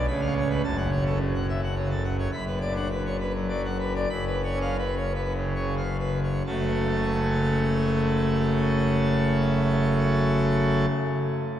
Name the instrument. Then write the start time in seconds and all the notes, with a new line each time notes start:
pipe organ
0.07 C#2 C#3 B5
0.21 F5
0.26 C#4
0.36 C#5
0.50 B4
0.64 F#1 F#2 A5
0.77 F#5
0.91 C#5
1.01 C#4
1.06 A4
1.20 C#3
1.35 F#5
1.49 E5
1.63 F#5
1.76 C#3 C#5
1.90 A4
2.04 F#5
2.19 C#5
2.32 F#1 F#2 B5
2.46 B4
2.61 D5
2.71 D4
2.76 F#5
2.91 B4
3.06 C#5
3.20 B4
3.34 F#3
3.49 F#3 D5
3.65 F#5
3.80 B4
3.96 D5
4.10 F#1 F#2 B5
4.27 B4
4.44 C#5
4.55 C#4
4.61 F5
4.78 B4
4.96 C#5
5.15 B4
5.35 C#3
5.55 C#3 C#5
5.77 F5
5.99 B4
6.23 C#5
6.46 F#1 F#2 C#3 A3 C#4 F#4 A4